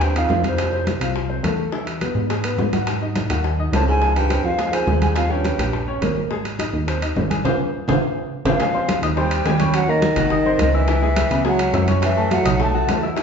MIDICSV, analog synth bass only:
0, 0, Header, 1, 2, 480
1, 0, Start_track
1, 0, Tempo, 285987
1, 977, Time_signature, 4, 2, 24, 8
1, 22200, End_track
2, 0, Start_track
2, 0, Title_t, "Analog synth bass"
2, 0, Program_c, 0, 38
2, 0, Note_on_c, 0, 39, 87
2, 446, Note_off_c, 0, 39, 0
2, 490, Note_on_c, 0, 41, 87
2, 1603, Note_off_c, 0, 41, 0
2, 1690, Note_on_c, 0, 36, 80
2, 2363, Note_off_c, 0, 36, 0
2, 2406, Note_on_c, 0, 40, 93
2, 3521, Note_off_c, 0, 40, 0
2, 3605, Note_on_c, 0, 44, 84
2, 4281, Note_off_c, 0, 44, 0
2, 4331, Note_on_c, 0, 44, 89
2, 5444, Note_off_c, 0, 44, 0
2, 5536, Note_on_c, 0, 39, 94
2, 6207, Note_off_c, 0, 39, 0
2, 6251, Note_on_c, 0, 37, 96
2, 7364, Note_off_c, 0, 37, 0
2, 7451, Note_on_c, 0, 41, 86
2, 8125, Note_off_c, 0, 41, 0
2, 8174, Note_on_c, 0, 39, 94
2, 9287, Note_off_c, 0, 39, 0
2, 9372, Note_on_c, 0, 34, 92
2, 10046, Note_off_c, 0, 34, 0
2, 10093, Note_on_c, 0, 32, 92
2, 11208, Note_off_c, 0, 32, 0
2, 11295, Note_on_c, 0, 39, 95
2, 11969, Note_off_c, 0, 39, 0
2, 12023, Note_on_c, 0, 32, 90
2, 12470, Note_off_c, 0, 32, 0
2, 12499, Note_on_c, 0, 32, 96
2, 12680, Note_off_c, 0, 32, 0
2, 13221, Note_on_c, 0, 32, 96
2, 13402, Note_off_c, 0, 32, 0
2, 14186, Note_on_c, 0, 32, 88
2, 14365, Note_off_c, 0, 32, 0
2, 15138, Note_on_c, 0, 39, 83
2, 15812, Note_off_c, 0, 39, 0
2, 15863, Note_on_c, 0, 39, 98
2, 16974, Note_off_c, 0, 39, 0
2, 17054, Note_on_c, 0, 32, 95
2, 17730, Note_off_c, 0, 32, 0
2, 17771, Note_on_c, 0, 37, 95
2, 18887, Note_off_c, 0, 37, 0
2, 18974, Note_on_c, 0, 37, 91
2, 19649, Note_off_c, 0, 37, 0
2, 19690, Note_on_c, 0, 42, 99
2, 20806, Note_off_c, 0, 42, 0
2, 20897, Note_on_c, 0, 35, 87
2, 21569, Note_off_c, 0, 35, 0
2, 21608, Note_on_c, 0, 40, 90
2, 22200, Note_off_c, 0, 40, 0
2, 22200, End_track
0, 0, End_of_file